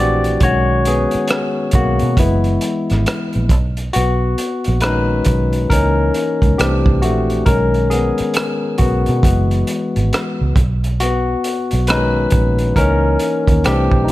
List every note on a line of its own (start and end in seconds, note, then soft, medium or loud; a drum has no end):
0.00 0.36 A#1 medium
0.00 0.16 E3 soft
0.00 0.16 A3 soft
0.00 0.42 C4 medium
0.00 0.17 D4 medium
0.00 0.18 F#4 medium
0.00 0.43 G4 medium
0.00 0.18 D5 medium
0.24 closed hi-hat soft
0.40 1.05 B1 medium
0.40 1.70 D#3 soft
0.40 1.70 G#3 soft
0.40 1.70 C#4 medium
0.40 0.84 F#4 medium
0.40 0.83 C#5 medium
0.40 kick medium
0.40 closed hi-hat medium
0.85 1.71 B3 medium
0.85 1.77 G#4 medium
0.85 closed hi-hat medium
1.11 muted fingered electric bass stroke soft
1.11 closed hi-hat soft
1.28 cross-stick medium
1.28 closed hi-hat medium
1.71 1.98 B1 medium
1.71 1.94 A#3 medium
1.71 1.94 F#4 medium
1.71 kick medium
1.71 closed hi-hat medium
1.99 2.16 B2 medium
1.99 closed hi-hat soft
2.17 2.57 F#1 loud
2.17 2.81 E3 soft
2.17 2.81 G#3 soft
2.17 3.47 B3 medium
2.17 3.47 E4 medium
2.17 kick medium
2.17 closed hi-hat medium
2.44 closed hi-hat soft
2.61 closed hi-hat medium
2.90 3.05 G#1 medium
2.90 cross-stick soft
2.90 closed hi-hat soft
3.06 cross-stick medium
3.06 closed hi-hat medium
3.33 3.51 A#1 medium
3.33 closed hi-hat soft
3.49 3.89 B1 medium
3.49 kick medium
3.49 closed hi-hat medium
3.77 closed hi-hat soft
3.93 4.34 B1 medium
3.93 4.79 B3 medium
3.93 4.84 F#4 medium
3.93 closed hi-hat medium
4.38 closed hi-hat medium
4.64 5.20 A#1 medium
4.64 closed hi-hat soft
4.81 5.67 D#3 soft
4.81 5.67 G#3 soft
4.81 5.67 C#4 soft
4.81 5.67 D#4 medium
4.81 5.73 B4 medium
4.81 cross-stick medium
4.81 closed hi-hat medium
5.25 5.66 B1 medium
5.25 kick medium
5.25 closed hi-hat medium
5.53 closed hi-hat soft
5.70 6.10 C#2 medium
5.70 6.55 E3 soft
5.70 6.55 A#3 soft
5.70 6.56 C#4 medium
5.70 6.56 D#4 medium
5.70 6.61 A#4 medium
5.70 kick medium
5.70 closed hi-hat medium
6.14 closed hi-hat medium
6.42 6.57 C#2 medium
6.42 kick medium
6.42 closed hi-hat soft
6.58 6.84 C2 medium
6.58 7.22 E3 soft
6.58 7.03 A3 soft
6.58 7.01 C4 medium
6.58 7.23 D4 medium
6.58 6.99 G4 medium
6.58 cross-stick medium
6.58 closed hi-hat medium
6.86 7.04 C2 medium
6.86 kick medium
7.02 7.43 A#1 medium
7.02 7.45 A3 medium
7.02 7.48 F#4 medium
7.02 closed hi-hat medium
7.30 closed hi-hat soft
7.46 8.11 B1 medium
7.46 8.75 D#3 soft
7.46 8.76 G#3 soft
7.46 7.89 C#4 medium
7.46 7.92 A#4 medium
7.46 kick medium
7.46 closed hi-hat medium
7.74 closed hi-hat soft
7.90 8.76 B3 medium
7.90 8.81 G#4 medium
7.90 closed hi-hat medium
8.18 muted fingered electric bass stroke soft
8.18 closed hi-hat soft
8.34 cross-stick medium
8.34 closed hi-hat medium
8.78 9.04 B1 medium
8.78 9.23 B3 medium
8.78 10.07 F#4 medium
8.78 kick medium
8.78 closed hi-hat medium
9.06 9.22 B2 medium
9.06 closed hi-hat soft
9.23 9.63 F#1 loud
9.23 10.52 E3 soft
9.23 10.52 G#3 soft
9.23 10.52 B3 medium
9.23 kick medium
9.23 closed hi-hat medium
9.51 closed hi-hat soft
9.67 closed hi-hat medium
9.96 10.10 G#1 medium
9.96 closed hi-hat soft
10.13 cross-stick medium
10.13 closed hi-hat medium
10.41 10.55 C#2 medium
10.56 11.34 B1 medium
10.56 kick medium
10.56 closed hi-hat medium
10.84 closed hi-hat soft
11.00 11.85 B3 medium
11.00 11.91 F#4 medium
11.00 closed hi-hat medium
11.44 closed hi-hat medium
11.71 12.26 B1 medium
11.71 closed hi-hat soft
11.87 12.73 D#3 soft
11.87 12.73 G#3 soft
11.87 12.73 C#4 medium
11.87 12.74 D#4 medium
11.87 12.79 B4 medium
11.87 cross-stick loud
11.87 closed hi-hat medium
12.30 12.72 A#1 medium
12.30 kick medium
12.30 closed hi-hat medium
12.59 closed hi-hat soft
12.76 13.16 C#2 loud
12.76 13.39 E3 soft
12.76 13.40 A#3 soft
12.76 13.61 C#4 medium
12.76 13.40 D#4 medium
12.76 13.67 A#4 medium
12.76 kick medium
12.76 closed hi-hat medium
13.19 closed hi-hat medium
13.47 13.63 D#2 medium
13.47 kick medium
13.47 closed hi-hat soft
13.64 13.90 C2 medium
13.64 14.12 E3 medium
13.64 14.12 A3 soft
13.64 14.02 C4 medium
13.64 14.12 D4 medium
13.64 14.05 G4 medium
13.64 cross-stick medium
13.64 closed hi-hat medium
13.91 14.10 B1 medium
13.91 kick medium
14.04 14.09 D#4 medium
14.08 closed hi-hat medium